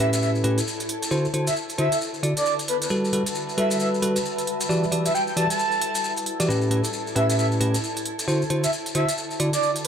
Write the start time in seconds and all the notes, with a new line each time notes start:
Already playing: E4 A4 A5
0.00 A2 C#4 G4 B4 E5
0.13 E5, closed hi-hat, maracas
0.22 E5, maracas
0.35 maracas
0.44 A2 C#4 G4 B4, open hi-hat
0.58 closed hi-hat, maracas
0.67 maracas
0.80 closed hi-hat, maracas
0.89 D3, open hi-hat
1.03 closed hi-hat, maracas
1.11 D3 E4 F#4 C5, maracas
1.25 F#4, maracas
1.34 D3 E4 F#4 C5, open hi-hat
1.39 B4
1.47 E5, closed hi-hat, maracas
1.56 maracas
1.69 closed hi-hat, maracas
1.78 D3 E4 F#4 C5 E5, open hi-hat
1.92 closed hi-hat, maracas
2.01 maracas
2.14 maracas
2.23 D3 E4 F#4 D5, open hi-hat
2.37 D5, closed hi-hat, maracas
2.46 maracas
2.59 closed hi-hat, maracas
2.68 B4, open hi-hat
2.82 B4, closed hi-hat, maracas
2.90 G3 F#4 A4 B4, maracas
3.05 maracas
3.13 G3 F#4 A4 B4, open hi-hat
3.26 closed hi-hat, maracas
3.35 maracas
3.49 maracas
3.58 G3 F#4 A4 B4 E5, open hi-hat
3.70 E5, closed hi-hat, maracas
3.80 E5, maracas
3.94 maracas
4.02 G3 F#4 A4 B4, open hi-hat
4.16 closed hi-hat, maracas
4.25 maracas
4.38 closed hi-hat, maracas
4.47 open hi-hat
4.60 closed hi-hat, maracas
4.69 E3 E4 F#4 G4 D5, maracas
4.83 maracas
4.92 E3 F#4 G4 A4 D5, open hi-hat
5.05 E5, closed hi-hat, maracas
5.15 G5, maracas
5.27 G5, maracas
5.37 E3 F#4 G4 D5 A5, open hi-hat
5.50 A5, closed hi-hat, maracas
5.59 maracas
5.72 maracas
5.82 open hi-hat
5.95 closed hi-hat, maracas
6.04 maracas
6.16 closed hi-hat, maracas
6.26 open hi-hat
6.40 E3 F#4 G4 D5, closed hi-hat, maracas
6.49 A2 C#4 G4 B4, maracas
6.61 maracas
6.71 A2 C#4 G4 B4, open hi-hat
6.84 closed hi-hat, maracas
6.93 maracas
7.07 maracas
7.16 A2 C#4 G4 B4 E5, open hi-hat
7.30 E5, closed hi-hat, maracas
7.38 E5, maracas
7.52 maracas
7.60 A2 C#4 G4 B4, open hi-hat
7.74 closed hi-hat, maracas
7.84 maracas
7.96 closed hi-hat, maracas
8.05 D3, open hi-hat
8.19 closed hi-hat, maracas
8.28 D3 E4 F#4 C5, maracas
8.41 F#4, maracas
8.50 D3 E4 F#4 C5, open hi-hat
8.63 E5, closed hi-hat, maracas
8.73 E5, maracas
8.86 closed hi-hat, maracas
8.95 D3 E4 F#4 B4 C5 E5, open hi-hat
9.09 closed hi-hat, maracas
9.18 maracas
9.31 maracas
9.40 D3 E4 F#4 D5, open hi-hat
9.53 D5, closed hi-hat, maracas
9.63 maracas
9.76 closed hi-hat, maracas
9.84 B4